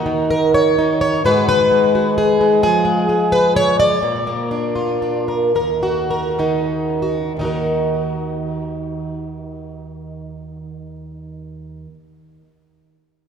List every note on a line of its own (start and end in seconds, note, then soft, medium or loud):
0.00 1.24 D#2 medium
0.00 0.77 D#4 soft
0.00 1.22 F#4 soft
0.00 0.29 A#4 soft
0.06 1.24 D#3 medium
0.31 0.54 A#4 medium
0.54 1.00 C#5 medium
0.78 1.22 D#4 soft
1.01 1.24 C#5 medium
1.24 2.60 G#2 medium
1.24 1.47 D#3 soft
1.24 1.71 G#3 soft
1.24 1.94 F#4 soft
1.24 1.47 B4 medium
1.48 2.63 D#3 medium
1.48 2.63 B4 medium
1.72 2.39 G#3 soft
1.95 2.17 F#4 soft
2.18 2.62 G#4 medium
2.41 2.84 G#3 soft
2.63 3.99 F3 medium
2.63 3.79 G#4 loud
2.85 3.08 G#3 medium
3.09 3.99 G#3 medium
3.32 3.55 B4 medium
3.56 3.79 C#5 loud
3.80 5.28 D5 loud
4.03 5.54 A#2 medium
4.27 5.51 A#3 medium
4.51 5.01 D4 medium
4.76 5.51 F4 soft
5.02 5.51 D4 soft
5.28 5.51 A#4 soft
5.55 7.35 D#2 medium
5.55 6.09 A#4 medium
5.83 7.01 F#4 medium
6.11 7.32 A#4 medium
6.39 7.38 D#3 medium
6.39 7.32 D#4 soft
7.02 7.32 F#4 soft
7.37 11.86 D#2 soft
7.37 11.88 D#3 soft
7.41 11.90 D#4 soft
7.41 11.92 F#4 soft
7.41 11.94 A#4 soft